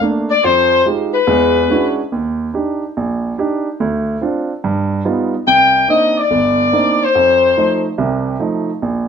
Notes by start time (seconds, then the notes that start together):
0.01 A3 A#3 D4
0.30 D5
0.44 F2 F3 C5
0.85 G#3 D#4 F4 G4
1.14 B4
1.27 E2 G#3
1.70 G#3 C#4 D4 E4 F#4
2.12 D#2
2.54 D4 D#4 G4
2.97 A#1
3.38 D4 D#4 G4
3.80 D2
4.21 C4 D4 F4
4.64 G2
5.05 G3 B3 D#4 F4
5.47 C2 G5
5.88 A#3 C4 D4 D#4 D#5
6.18 D5
6.31 G1
6.72 A#3 C4 D4 D#4
7.04 C5
7.15 F2
7.57 F3 A3 D#4
7.98 C2 C3
8.39 F3 A3 D#4
8.82 A#1